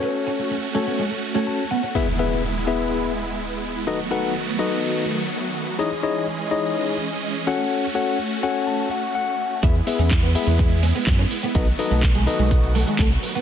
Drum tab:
HH |----------------|----------------|----------------|----------------|
SH |----------------|----------------|----------------|----------------|
CP |----------------|----------------|----------------|----------------|
BD |----------------|----------------|----------------|----------------|

HH |----------------|x-o-x-o-x-o-x-o-|x-o-x-o-x-o-x-o-|
SH |----------------|xxxxxxxxxxxxxxxx|xxxxxxxxxxxxxxxx|
CP |----------------|----x-------x---|----x-------x---|
BD |----------------|o---o---o---o---|o---o---o---o---|